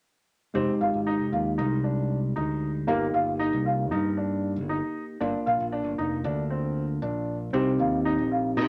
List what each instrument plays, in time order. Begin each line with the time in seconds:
0.54 fingered electric bass F1, tine electric piano G#3 D#4 G4, grand piano C4
0.81 fingered electric bass G#1, grand piano F4
0.94 fingered electric bass G#1
1.07 grand piano D#4
1.20 fingered electric bass F1
1.32 fingered electric bass D#2, grand piano F4
1.58 fingered electric bass C2, grand piano D#4
1.84 grand piano D4
2.36 fingered electric bass D2, grand piano D#4
2.87 fingered electric bass G1, tine electric piano A#3 D#4 G4, grand piano A#3
3.14 grand piano F4
3.39 grand piano D#4
3.53 fingered electric bass C2
3.66 grand piano F4
3.91 fingered electric bass G2, grand piano D#4
4.17 grand piano D4
4.56 fingered electric bass G1
4.69 grand piano D#4
5.20 fingered electric bass G1, tine electric piano A#3 D4 F4, grand piano D4
5.46 fingered electric bass A#1, grand piano F4
5.60 fingered electric bass A#1
5.72 grand piano D4
5.86 fingered electric bass G1
5.98 fingered electric bass F1, grand piano D#4
6.24 fingered electric bass D2, grand piano D4
6.50 grand piano C4
7.02 fingered electric bass A#1, grand piano D4
7.53 fingered electric bass C2, tine electric piano C4 D#4 G4, grand piano C4
7.79 fingered electric bass D#2, grand piano F4
8.05 grand piano D#4
8.18 fingered electric bass A#1
8.31 grand piano F4
8.57 fingered electric bass C3, grand piano D#4